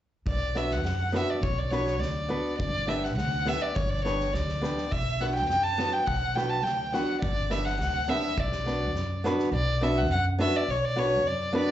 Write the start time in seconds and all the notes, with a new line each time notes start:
0.26 B1 D5, kick
0.55 B3 D4 F#4 B4 E5, snare
0.71 F#5, snare
0.83 F#2 F#5, snare
1.12 B3 D4 F#4 B4 E5, snare
1.30 D5
1.41 B1 C#5, kick
1.59 D5
1.71 B3 D4 F#4 B4 C#5, snare
1.87 snare
1.99 D2 D5, snare
2.29 B3 D4 F#4 B4
2.59 G1 D5, kick
2.87 B3 D4 G4 B4 E5, snare
3.04 F#5, snare
3.17 D2 F#5, snare
3.45 B3 D4 G4 B4 E5, snare
3.62 D5
3.75 G1 C#5, kick
3.89 D5
4.05 B3 D4 G4 B4 C#5, snare
4.20 snare
4.33 D2 D5, snare
4.49 snare
4.61 B3 D4 G4 B4, snare
4.78 snare
4.91 B1 E5, kick
5.20 B3 D4 F#4 B4 F#5, snare
5.35 G5, snare
5.49 F#2 G5, snare
5.63 A5
5.78 B3 D4 F#4 B4, snare
5.93 G5
6.06 B1 F#5, kick
6.35 B3 D4 F#4 B4 G5, snare
6.49 A5
6.63 D2 G5, snare
6.86 G5
6.92 B3 D4 F#4 B4 F#5, snare
7.21 G1 D5, kick
7.50 B3 D4 G4 B4 E5, snare
7.65 F#5, snare
7.79 D2 F#5, snare
8.08 B3 D4 G4 B4 E5, snare
8.37 B1 D5, kick
8.52 snare
8.66 B3 D4 F#4 B4, snare
8.94 F#2, snare
9.24 B3 D4 F#4 B4, snare
9.39 snare
9.52 B1 D5
9.81 B3 D4 F#4 B4 E5
9.98 F#5
10.10 F#2 F#5
10.39 B3 D4 F#4 B4 E5
10.56 D5
10.68 B1 C#5
10.85 D5
10.96 B3 D4 F#4 B4 C#5
11.25 F#2 D5
11.53 B3 D4 F#4 B4
11.57 D5